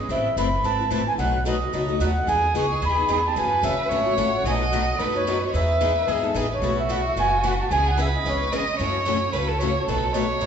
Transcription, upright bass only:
0.09 0.31 A1 medium
0.36 0.59 F#1 medium
0.64 0.87 G#1 medium
0.91 1.14 A1 medium
1.18 1.62 B1 medium
1.73 1.96 C#2 medium
2.00 2.23 D#2 medium
2.27 2.49 E2 medium
2.54 2.77 C#2 medium
2.82 3.05 D#2 medium
3.09 3.32 E2 medium
3.36 3.58 F#2 medium
3.63 3.86 F#1 medium
3.90 4.13 G#1 medium
4.17 4.40 A1 medium
4.44 4.88 B1 medium
4.99 5.42 F#2 medium
5.54 5.97 E2 medium
6.07 6.31 G#1 medium
6.35 6.58 A1 medium
6.62 7.05 B1 medium
7.16 7.60 F#1 medium
7.70 8.14 C#2 medium
8.25 8.68 G#1 medium
8.79 9.23 F#2 medium
9.33 9.77 C#2 medium
9.88 10.31 B1 medium
10.41 10.46 F#1 medium

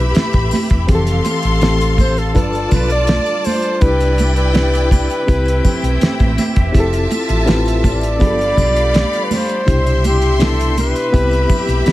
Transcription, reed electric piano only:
0.00 0.79 C4 medium
0.00 0.79 E4 medium
0.00 0.79 G4 medium
0.00 0.79 B4 medium
0.87 1.57 E3 medium
0.87 1.56 C4 medium
0.87 1.57 G4 medium
0.87 0.95 G#4 medium
0.95 1.60 A4 medium
1.62 2.36 E3 medium
1.62 2.35 C4 medium
1.62 2.36 G4 medium
1.62 2.34 A4 medium
2.34 3.72 D4 medium
2.34 3.72 F4 medium
2.34 3.72 A4 medium
2.34 3.73 B4 medium
3.81 4.50 D4 medium
3.81 4.50 E4 medium
3.81 4.50 G4 medium
3.81 4.51 B4 medium
4.54 5.28 D4 medium
4.54 5.26 E4 medium
4.54 5.27 G4 medium
4.54 5.27 B4 medium
5.27 6.65 C4 medium
5.27 6.65 E4 medium
5.27 6.65 G4 medium
5.27 6.65 B4 medium
6.72 7.42 C4 medium
6.72 7.42 E4 medium
6.72 7.42 G4 medium
6.72 6.81 G#4 medium
6.80 7.46 A4 loud
7.46 8.20 C4 medium
7.46 8.20 E4 medium
7.46 8.20 G4 medium
7.46 8.21 B4 medium
8.19 9.57 B3 medium
8.19 9.57 D4 medium
8.19 9.57 F4 medium
8.19 8.27 G#4 medium
8.27 9.61 A4 medium
9.66 10.35 B2 medium
9.66 10.35 D4 medium
9.66 10.35 E4 medium
9.66 10.36 G4 medium
10.39 11.11 B3 medium
10.39 11.13 D4 medium
10.39 11.11 E4 medium
10.39 11.12 G4 medium
11.12 11.92 B3 medium
11.12 11.92 C4 medium
11.12 11.92 E4 medium
11.12 11.92 G4 medium

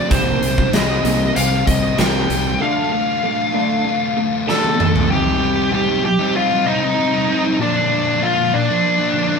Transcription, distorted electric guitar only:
0.10 0.72 C3 medium
0.10 0.72 D#3 medium
0.10 0.73 G3 medium
0.10 0.73 C4 medium
0.10 0.74 G4 loud
0.73 1.03 C3 medium
0.73 1.04 D#3 medium
0.73 1.04 G3 medium
0.73 1.06 C4 medium
0.73 1.05 G4 medium
1.04 1.35 C3 medium
1.04 1.35 D#3 medium
1.04 1.35 G3 medium
1.04 1.36 C4 medium
1.04 1.37 G4 medium
1.36 1.98 C3 loud
1.36 1.99 D#3 loud
1.36 1.99 G3 loud
1.36 2.00 C4 loud
1.36 2.00 G4 loud
1.99 2.28 C3 medium
1.99 2.29 D#3 medium
1.99 2.30 G3 medium
1.99 2.30 C4 medium
1.99 2.31 G4 medium
2.29 2.59 C3 medium
2.29 2.60 D#3 medium
2.29 2.60 G3 medium
2.29 2.60 C4 medium
2.29 2.60 G4 medium
2.61 3.22 D3 medium
2.61 3.23 A3 medium
2.61 3.23 D4 medium
2.61 3.24 F4 medium
3.23 3.53 D3 medium
3.23 3.54 A3 medium
3.23 3.54 D4 medium
3.23 3.55 F4 loud
3.54 3.84 D3 medium
3.54 3.85 A3 medium
3.54 3.85 D4 medium
3.54 3.86 F4 medium
3.85 4.46 D3 loud
3.85 4.47 A3 loud
3.85 4.47 D4 loud
3.85 4.47 F4 loud
4.47 4.77 D3 medium
4.47 4.77 A3 medium
4.47 4.78 D4 medium
4.47 4.79 F4 medium
4.78 5.08 D3 medium
4.78 5.08 A3 medium
4.78 5.09 D4 medium
4.78 5.09 F4 medium
5.09 5.38 C3 loud
5.09 5.39 G3 medium
5.09 5.40 C4 medium
5.09 5.41 D#4 loud
5.39 5.70 C3 medium
5.39 5.71 G3 medium
5.39 5.72 C4 medium
5.39 5.73 D#4 medium
5.71 6.03 C3 medium
5.71 5.88 G3 loud
5.71 5.87 C4 loud
5.71 5.85 D#4 loud
5.86 6.03 G3 medium
5.86 6.03 C4 medium
5.86 6.04 D#4 medium
6.04 muted distorted electric guitar stroke soft
6.19 6.52 G3 medium
6.19 6.50 C4 medium
6.19 6.49 D#4 medium
6.50 6.65 G3 medium
6.50 6.66 C4 medium
6.50 6.66 D#4 medium
6.65 6.96 C3 medium
6.65 6.83 G3 medium
6.65 6.82 C4 medium
6.65 6.79 D#4 loud
6.81 6.97 G3 medium
6.81 6.98 C4 medium
6.81 6.99 D#4 medium
6.97 7.26 C3 loud
6.97 7.14 G3 medium
6.97 7.13 C4 loud
6.97 7.11 D#4 loud
7.12 7.27 G3 medium
7.12 7.28 C4 medium
7.12 7.28 D#4 medium
7.27 7.58 C3 medium
7.27 7.58 G3 medium
7.27 7.58 C4 medium
7.27 7.59 D#4 medium
7.59 8.20 A#2 loud
7.59 7.88 D3 medium
7.59 7.89 F3 loud
7.59 7.91 A#3 loud
7.59 7.91 D4 loud
7.90 8.21 D3 medium
7.90 8.21 F3 medium
7.90 8.23 A#3 medium
7.90 8.23 D4 medium
8.21 8.69 A#2 loud
8.21 8.52 D3 loud
8.21 8.39 F3 loud
8.21 8.38 A#3 loud
8.21 8.36 D4 loud
8.37 8.52 F3 medium
8.37 8.54 A#3 medium
8.37 8.53 D4 medium
8.53 muted distorted electric guitar stroke medium
8.69 9.01 F3 medium
8.69 8.99 A#3 medium
8.69 8.98 D4 medium
8.99 9.14 F3 medium
8.99 9.15 A#3 medium
8.99 9.16 D4 medium
9.14 9.39 D3 medium
9.14 9.32 F3 loud
9.14 9.31 A#3 medium
9.14 9.29 D4 medium
9.30 9.39 F3 medium
9.30 9.39 A#3 medium
9.30 9.39 D4 medium

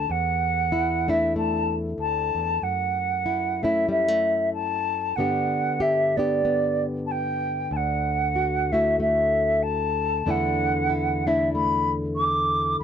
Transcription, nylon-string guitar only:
0.00 1.07 A3 medium
0.00 0.72 E4 soft
0.10 1.97 E2 medium
0.72 1.09 E4 medium
1.08 1.36 A3 soft
1.08 2.59 D4 soft
1.08 3.25 E4 medium
1.36 2.60 A3 medium
1.98 2.34 D2 medium
2.35 2.62 E2 soft
2.62 5.14 F#2 medium
3.26 3.63 E4 medium
3.63 3.88 A3 soft
3.63 5.14 C#4 soft
3.63 5.18 E4 medium
3.89 4.08 G3 soft
4.08 5.17 A3 soft
5.17 7.68 G2 medium
5.17 10.25 D3 soft
5.17 6.16 B3 soft
5.17 6.18 D4 soft
5.17 5.79 G4 soft
5.80 6.17 G4 medium
6.17 6.44 B3 soft
6.17 8.73 D4 soft
6.17 7.69 G4 soft
6.45 7.69 B3 medium
7.71 10.25 D2 medium
8.36 8.72 F#4 medium
8.73 8.99 A3 soft
8.73 10.27 E4 soft
8.73 10.24 F#4 soft
9.00 10.27 A3 medium
10.26 12.77 E2 medium
10.26 12.81 D3 soft
10.26 11.26 A3 soft
10.26 11.26 D4 soft
10.26 10.89 E4 soft
10.90 11.27 E4 medium
11.27 11.54 A3 soft
11.27 12.78 D4 soft
11.27 12.84 E4 medium
11.55 12.84 A3 medium

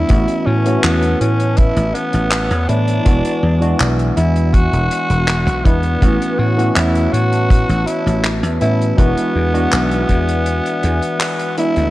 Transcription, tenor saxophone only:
0.00 0.47 E4 loud
0.46 0.83 C#4 medium
0.83 1.18 B3 medium
1.20 1.59 C#4 medium
1.57 1.96 E4 loud
1.94 2.70 B3 loud
2.68 3.90 D4 loud
4.17 4.55 E4 loud
4.54 5.66 F#4 loud
5.65 6.40 B3 loud
6.39 6.69 F#4 medium
6.69 6.77 F#4 medium
6.76 7.14 E4 loud
7.13 7.88 F#4 loud
7.87 8.34 E4 medium
8.61 9.00 E4 loud
8.98 11.58 B3 loud
11.58 11.90 E4 loud

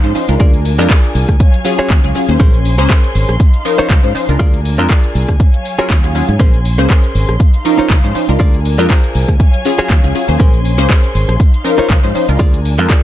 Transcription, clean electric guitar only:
0.15 muted clean electric guitar stroke soft
0.40 0.59 F4 loud
0.40 0.59 G#4 medium
0.40 0.60 A#4 medium
0.40 0.60 D5 loud
0.79 muted clean electric guitar stroke medium
0.90 1.34 F4 medium
0.90 1.34 G#4 medium
0.90 1.34 A#4 medium
0.90 1.35 D5 medium
1.79 1.97 F4 medium
1.79 1.97 F#4 medium
1.79 1.97 G#4 medium
1.79 1.97 C#5 loud
2.15 muted clean electric guitar stroke soft
2.40 2.59 C#4 loud
2.40 2.59 G#4 loud
2.40 2.59 A#4 medium
2.40 2.60 C5 loud
2.78 muted clean electric guitar stroke medium
2.89 3.34 C#4 medium
2.89 3.34 G#4 medium
2.89 3.34 A#4 medium
2.89 3.34 C5 loud
3.78 3.97 D#4 medium
3.78 3.97 F4 medium
3.78 3.97 C5 medium
3.78 3.97 C#5 loud
4.15 muted clean electric guitar stroke soft
4.39 4.59 F4 loud
4.39 4.59 G#4 medium
4.39 4.59 A#4 medium
4.39 4.59 D5 loud
4.78 muted clean electric guitar stroke medium
4.89 5.34 F4 medium
4.89 5.34 G#4 medium
4.89 5.34 A#4 medium
4.89 5.35 D5 medium
5.79 5.97 F4 medium
5.79 5.97 F#4 medium
5.79 5.97 G#4 medium
5.79 5.97 C#5 loud
6.15 muted clean electric guitar stroke soft
6.40 6.59 C#4 loud
6.40 6.59 G#4 loud
6.40 6.59 A#4 medium
6.40 6.59 C5 loud
6.78 muted clean electric guitar stroke medium
6.90 7.34 C#4 loud
6.90 7.34 G#4 medium
6.90 7.35 A#4 medium
6.90 7.35 C5 medium
7.78 7.97 D#4 medium
7.78 7.97 F4 medium
7.78 7.97 C5 medium
7.78 7.97 C#5 medium
8.15 muted clean electric guitar stroke soft
8.40 8.59 F4 loud
8.40 8.59 G#4 medium
8.40 8.59 A#4 loud
8.40 8.60 D5 loud
8.78 muted clean electric guitar stroke medium
8.90 9.34 F4 medium
8.90 9.34 G#4 medium
8.90 9.34 A#4 medium
8.90 9.35 C5 medium
9.79 9.97 F4 medium
9.79 9.97 F#4 medium
9.79 9.97 G#4 medium
9.79 9.97 C#5 loud
9.90 10.37 F5 medium
10.15 muted clean electric guitar stroke soft
10.40 10.59 C#4 loud
10.40 10.59 G#4 medium
10.40 10.59 A#4 loud
10.40 10.59 C5 loud
10.78 muted clean electric guitar stroke medium
10.89 11.34 C#4 medium
10.89 11.34 G#4 medium
10.89 11.34 A#4 medium
10.89 11.34 C5 loud
11.78 11.97 D#4 medium
11.78 11.97 F4 medium
11.78 11.97 C5 medium
11.78 11.97 C#5 medium
12.15 muted clean electric guitar stroke soft
12.39 12.59 F4 loud
12.39 12.59 G#4 loud
12.39 12.59 A#4 medium
12.39 12.59 D5 loud
12.79 muted clean electric guitar stroke medium
12.90 13.03 F4 medium
12.90 13.03 G#4 medium
12.90 13.03 A#4 medium
12.90 13.03 D5 medium

